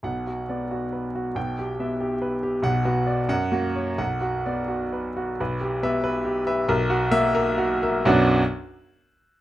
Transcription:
<<
  \new Staff \with { instrumentName = "Grand piano" } { \time 6/8 \key b \minor \tempo 4. = 90 << { fis''4 r2 | g''4 r2 | fis''4 r8 fis''4 r8 | fis''4 r2 |
r4 e''8 r4. | r4 e''8 r4. | <b,, fis, fis b d' fis'>8 r2 r8 | } \\ { r8 fis'8 d''8 fis'8 b'8 fis'8 | r8 g'8 e''8 g'8 b'8 g'8 | r8 fis'8 d''8 r8 fis'8 cis''8 | r8 fis'8 d''8 fis'8 b'8 fis'8 |
b'8 g'8 b'8 b'8 g'8 <b' e''>8 | ais'8 fis'8 ais'8 ais'8 fis'8 <ais' e''>8 | r2. | } >> }
  \new Staff \with { instrumentName = "Grand piano" } { \clef bass \time 6/8 \key b \minor <b,, b,>4 b4 r4 | <b,, b,>4 b4 r4 | <b,, b,>8 b4 fis,8 ais4 | b,,4 b4 r4 |
b,,4 b4 r4 | b,,4 ais4 r4 | r2. | }
>>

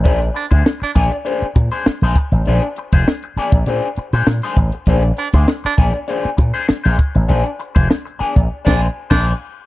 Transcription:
<<
  \new Staff \with { instrumentName = "Clean electric guitar" } { \time 4/4 \key bes \mixolydian \tempo 4 = 99 <d' aes' c''>16 r8 <d' aes' c''>16 r8 <d' aes' d''>16 r16 <d' aes' c''>16 r8 <d' aes' c''>16 r16 <d' aes' c''>16 r8 | <d' aes' c''>16 r8 <d' aes' c''>16 r8 <d' aes' d''>16 r16 <d' aes' c''>16 r8 <d' aes' c''>16 r16 <d' aes' c''>16 r8 | <d' aes' c''>16 r8 <d' aes' c''>16 r8 <d' aes' d''>16 r16 <d' aes' c''>16 r8 <d' aes' c''>16 r16 <d' aes' c''>16 r8 | <d' aes' c''>16 r8 <d' aes' c''>16 r8 <d' aes' d''>16 r8 <d' aes' c''>8 r16 <d' aes' c''>8 r8 | }
  \new Staff \with { instrumentName = "Baritone saxophone" } { \time 4/4 \key bes \mixolydian r8 d'16 r8 d'16 r2 r8 | r1 | r8 d'16 r8 d'16 r2 r8 | r2 r16 d'8 r16 d'8 r8 | }
  \new Staff \with { instrumentName = "Slap bass" } { \clef bass \time 4/4 \key bes \mixolydian bes,,8 r16 d,16 r8 bes,,16 r8. bes,16 r8 bes,,16 r16 a,,16 | bes,,16 r8 f,,16 r8. bes,,16 bes,16 r8 bes,16 bes,16 r16 a,,16 r16 | bes,,8 r16 d,16 r8 bes,,16 r8. bes,16 r8 bes,,16 r16 a,,16 | bes,,16 r8 f,,16 r8. bes,,16 r16 bes,,8 r16 bes,,8 r8 | }
  \new DrumStaff \with { instrumentName = "Drums" } \drummode { \time 4/4 <hh bd>16 hh16 hh16 <hh bd>16 sn16 hh16 <hh bd>16 hh16 hh16 hh16 <hh bd>16 hh16 sn16 hh16 <hh bd>16 hh16 | hh16 hh16 hh16 <hh bd>16 sn16 hh16 <hh sn>16 <hh bd>16 hh16 hh16 hh16 hh16 sn16 hh16 <hh bd>16 hh16 | <hh bd>16 hh16 hh16 <hh bd>16 sn16 hh16 <hh bd sn>16 hh16 hh16 hh16 <hh bd>16 hh16 sn16 hh16 <hh bd>16 hh16 | hh16 hh16 hh16 <hh bd>16 sn16 hh16 hho16 <hh bd>16 r16 <cymc bd sn>8. <cymc bd sn>4 | }
>>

